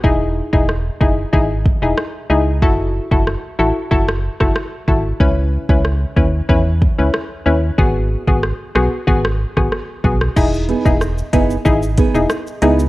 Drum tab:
CC |----------------|----------------|----------------|----------------|
HH |----------------|----------------|----------------|----------------|
SH |----------------|----------------|----------------|----------------|
SD |----r-------r---|----r----r-rr---|----r-------r---|----r-r--r-rr--r|
BD |o--o--o-o-o-----|o--o----o--o--o-|o--o--o-o-o-----|o--o----o--o--o-|

CC |x---------------|
HH |--x---x---x---x-|
SH |xxxxxxxxxxxxxxxx|
SD |----r-------r---|
BD |o--o--o-o-o-----|